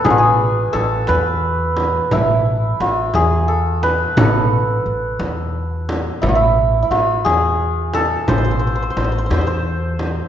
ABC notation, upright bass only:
X:1
M:6/8
L:1/8
Q:3/8=58
K:none
V:1 name="Upright bass" clef=bass
A,,,2 A,,, E,,3 | A,,,2 A,,, E,,3 | A,,,2 A,,, E,,3 | A,,,2 A,,, E,,3 |
A,,,2 A,,, E,,3 |]